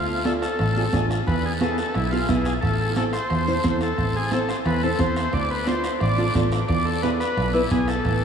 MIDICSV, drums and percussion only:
0, 0, Header, 1, 3, 480
1, 0, Start_track
1, 0, Key_signature, 0, "minor"
1, 0, Tempo, 338792
1, 1802, Time_signature, 4, 2, 24, 8
1, 11680, End_track
2, 0, Start_track
2, 0, Title_t, "Two-headed folk drums"
2, 356, Note_on_c, 9, 37, 73
2, 497, Note_off_c, 9, 37, 0
2, 597, Note_on_c, 9, 37, 72
2, 739, Note_off_c, 9, 37, 0
2, 837, Note_on_c, 9, 37, 75
2, 979, Note_off_c, 9, 37, 0
2, 1320, Note_on_c, 9, 36, 71
2, 1322, Note_on_c, 9, 37, 72
2, 1462, Note_off_c, 9, 36, 0
2, 1463, Note_off_c, 9, 37, 0
2, 1567, Note_on_c, 9, 37, 73
2, 1709, Note_off_c, 9, 37, 0
2, 1804, Note_on_c, 9, 36, 71
2, 1813, Note_on_c, 9, 37, 64
2, 1946, Note_off_c, 9, 36, 0
2, 1954, Note_off_c, 9, 37, 0
2, 2287, Note_on_c, 9, 37, 79
2, 2429, Note_off_c, 9, 37, 0
2, 2524, Note_on_c, 9, 37, 63
2, 2665, Note_off_c, 9, 37, 0
2, 2755, Note_on_c, 9, 37, 80
2, 2897, Note_off_c, 9, 37, 0
2, 3239, Note_on_c, 9, 37, 70
2, 3241, Note_on_c, 9, 36, 71
2, 3381, Note_off_c, 9, 37, 0
2, 3382, Note_off_c, 9, 36, 0
2, 3485, Note_on_c, 9, 37, 72
2, 3627, Note_off_c, 9, 37, 0
2, 3722, Note_on_c, 9, 36, 70
2, 3725, Note_on_c, 9, 37, 66
2, 3863, Note_off_c, 9, 36, 0
2, 3867, Note_off_c, 9, 37, 0
2, 4200, Note_on_c, 9, 37, 72
2, 4342, Note_off_c, 9, 37, 0
2, 4432, Note_on_c, 9, 37, 74
2, 4573, Note_off_c, 9, 37, 0
2, 4676, Note_on_c, 9, 37, 73
2, 4818, Note_off_c, 9, 37, 0
2, 5157, Note_on_c, 9, 37, 69
2, 5159, Note_on_c, 9, 36, 71
2, 5299, Note_off_c, 9, 37, 0
2, 5300, Note_off_c, 9, 36, 0
2, 5394, Note_on_c, 9, 37, 68
2, 5536, Note_off_c, 9, 37, 0
2, 5637, Note_on_c, 9, 36, 63
2, 5638, Note_on_c, 9, 37, 66
2, 5779, Note_off_c, 9, 36, 0
2, 5779, Note_off_c, 9, 37, 0
2, 6115, Note_on_c, 9, 37, 67
2, 6257, Note_off_c, 9, 37, 0
2, 6355, Note_on_c, 9, 37, 74
2, 6497, Note_off_c, 9, 37, 0
2, 6596, Note_on_c, 9, 37, 79
2, 6738, Note_off_c, 9, 37, 0
2, 7074, Note_on_c, 9, 36, 70
2, 7075, Note_on_c, 9, 37, 68
2, 7216, Note_off_c, 9, 36, 0
2, 7217, Note_off_c, 9, 37, 0
2, 7319, Note_on_c, 9, 37, 76
2, 7460, Note_off_c, 9, 37, 0
2, 7548, Note_on_c, 9, 37, 64
2, 7553, Note_on_c, 9, 36, 64
2, 7690, Note_off_c, 9, 37, 0
2, 7694, Note_off_c, 9, 36, 0
2, 8034, Note_on_c, 9, 37, 70
2, 8176, Note_off_c, 9, 37, 0
2, 8277, Note_on_c, 9, 37, 71
2, 8418, Note_off_c, 9, 37, 0
2, 8507, Note_on_c, 9, 37, 74
2, 8649, Note_off_c, 9, 37, 0
2, 8995, Note_on_c, 9, 36, 67
2, 8996, Note_on_c, 9, 37, 69
2, 9137, Note_off_c, 9, 36, 0
2, 9138, Note_off_c, 9, 37, 0
2, 9242, Note_on_c, 9, 37, 73
2, 9384, Note_off_c, 9, 37, 0
2, 9478, Note_on_c, 9, 36, 63
2, 9484, Note_on_c, 9, 37, 66
2, 9620, Note_off_c, 9, 36, 0
2, 9626, Note_off_c, 9, 37, 0
2, 9966, Note_on_c, 9, 37, 76
2, 10107, Note_off_c, 9, 37, 0
2, 10206, Note_on_c, 9, 37, 70
2, 10347, Note_off_c, 9, 37, 0
2, 10447, Note_on_c, 9, 37, 73
2, 10589, Note_off_c, 9, 37, 0
2, 10921, Note_on_c, 9, 36, 75
2, 10924, Note_on_c, 9, 37, 71
2, 11063, Note_off_c, 9, 36, 0
2, 11066, Note_off_c, 9, 37, 0
2, 11160, Note_on_c, 9, 37, 77
2, 11301, Note_off_c, 9, 37, 0
2, 11401, Note_on_c, 9, 36, 66
2, 11407, Note_on_c, 9, 37, 64
2, 11543, Note_off_c, 9, 36, 0
2, 11549, Note_off_c, 9, 37, 0
2, 11680, End_track
3, 0, Start_track
3, 0, Title_t, "Drums"
3, 354, Note_on_c, 9, 63, 72
3, 365, Note_on_c, 9, 73, 62
3, 496, Note_off_c, 9, 63, 0
3, 506, Note_off_c, 9, 73, 0
3, 605, Note_on_c, 9, 73, 67
3, 747, Note_off_c, 9, 73, 0
3, 832, Note_on_c, 9, 63, 33
3, 837, Note_on_c, 9, 74, 61
3, 974, Note_off_c, 9, 63, 0
3, 979, Note_off_c, 9, 74, 0
3, 1310, Note_on_c, 9, 63, 68
3, 1326, Note_on_c, 9, 73, 65
3, 1452, Note_off_c, 9, 63, 0
3, 1468, Note_off_c, 9, 73, 0
3, 1571, Note_on_c, 9, 73, 61
3, 1712, Note_off_c, 9, 73, 0
3, 1794, Note_on_c, 9, 63, 35
3, 1807, Note_on_c, 9, 74, 63
3, 1936, Note_off_c, 9, 63, 0
3, 1949, Note_off_c, 9, 74, 0
3, 2276, Note_on_c, 9, 63, 81
3, 2286, Note_on_c, 9, 73, 58
3, 2418, Note_off_c, 9, 63, 0
3, 2428, Note_off_c, 9, 73, 0
3, 2522, Note_on_c, 9, 73, 67
3, 2663, Note_off_c, 9, 73, 0
3, 2761, Note_on_c, 9, 63, 34
3, 2767, Note_on_c, 9, 74, 61
3, 2903, Note_off_c, 9, 63, 0
3, 2909, Note_off_c, 9, 74, 0
3, 3238, Note_on_c, 9, 63, 73
3, 3240, Note_on_c, 9, 73, 65
3, 3380, Note_off_c, 9, 63, 0
3, 3382, Note_off_c, 9, 73, 0
3, 3476, Note_on_c, 9, 73, 64
3, 3618, Note_off_c, 9, 73, 0
3, 3720, Note_on_c, 9, 63, 34
3, 3720, Note_on_c, 9, 74, 66
3, 3861, Note_off_c, 9, 74, 0
3, 3862, Note_off_c, 9, 63, 0
3, 4193, Note_on_c, 9, 73, 58
3, 4195, Note_on_c, 9, 63, 83
3, 4334, Note_off_c, 9, 73, 0
3, 4337, Note_off_c, 9, 63, 0
3, 4438, Note_on_c, 9, 73, 67
3, 4579, Note_off_c, 9, 73, 0
3, 4678, Note_on_c, 9, 63, 33
3, 4681, Note_on_c, 9, 74, 56
3, 4820, Note_off_c, 9, 63, 0
3, 4823, Note_off_c, 9, 74, 0
3, 5153, Note_on_c, 9, 73, 63
3, 5158, Note_on_c, 9, 63, 72
3, 5295, Note_off_c, 9, 73, 0
3, 5299, Note_off_c, 9, 63, 0
3, 5396, Note_on_c, 9, 73, 61
3, 5538, Note_off_c, 9, 73, 0
3, 5642, Note_on_c, 9, 63, 36
3, 5649, Note_on_c, 9, 74, 62
3, 5783, Note_off_c, 9, 63, 0
3, 5791, Note_off_c, 9, 74, 0
3, 6113, Note_on_c, 9, 63, 79
3, 6122, Note_on_c, 9, 73, 57
3, 6254, Note_off_c, 9, 63, 0
3, 6264, Note_off_c, 9, 73, 0
3, 6364, Note_on_c, 9, 73, 67
3, 6506, Note_off_c, 9, 73, 0
3, 6590, Note_on_c, 9, 63, 34
3, 6603, Note_on_c, 9, 74, 61
3, 6732, Note_off_c, 9, 63, 0
3, 6744, Note_off_c, 9, 74, 0
3, 7066, Note_on_c, 9, 63, 77
3, 7074, Note_on_c, 9, 73, 62
3, 7208, Note_off_c, 9, 63, 0
3, 7216, Note_off_c, 9, 73, 0
3, 7317, Note_on_c, 9, 73, 62
3, 7459, Note_off_c, 9, 73, 0
3, 7550, Note_on_c, 9, 74, 61
3, 7554, Note_on_c, 9, 63, 36
3, 7691, Note_off_c, 9, 74, 0
3, 7696, Note_off_c, 9, 63, 0
3, 8034, Note_on_c, 9, 73, 63
3, 8038, Note_on_c, 9, 63, 73
3, 8176, Note_off_c, 9, 73, 0
3, 8180, Note_off_c, 9, 63, 0
3, 8272, Note_on_c, 9, 73, 68
3, 8414, Note_off_c, 9, 73, 0
3, 8517, Note_on_c, 9, 74, 61
3, 8518, Note_on_c, 9, 63, 33
3, 8658, Note_off_c, 9, 74, 0
3, 8660, Note_off_c, 9, 63, 0
3, 8997, Note_on_c, 9, 63, 71
3, 9002, Note_on_c, 9, 73, 66
3, 9139, Note_off_c, 9, 63, 0
3, 9144, Note_off_c, 9, 73, 0
3, 9235, Note_on_c, 9, 73, 63
3, 9377, Note_off_c, 9, 73, 0
3, 9474, Note_on_c, 9, 74, 66
3, 9488, Note_on_c, 9, 63, 35
3, 9615, Note_off_c, 9, 74, 0
3, 9629, Note_off_c, 9, 63, 0
3, 9965, Note_on_c, 9, 73, 62
3, 9966, Note_on_c, 9, 63, 77
3, 10107, Note_off_c, 9, 63, 0
3, 10107, Note_off_c, 9, 73, 0
3, 10214, Note_on_c, 9, 73, 62
3, 10356, Note_off_c, 9, 73, 0
3, 10446, Note_on_c, 9, 63, 34
3, 10451, Note_on_c, 9, 74, 61
3, 10587, Note_off_c, 9, 63, 0
3, 10593, Note_off_c, 9, 74, 0
3, 10923, Note_on_c, 9, 73, 60
3, 10926, Note_on_c, 9, 63, 69
3, 11064, Note_off_c, 9, 73, 0
3, 11068, Note_off_c, 9, 63, 0
3, 11165, Note_on_c, 9, 73, 64
3, 11306, Note_off_c, 9, 73, 0
3, 11403, Note_on_c, 9, 74, 67
3, 11405, Note_on_c, 9, 63, 36
3, 11545, Note_off_c, 9, 74, 0
3, 11546, Note_off_c, 9, 63, 0
3, 11680, End_track
0, 0, End_of_file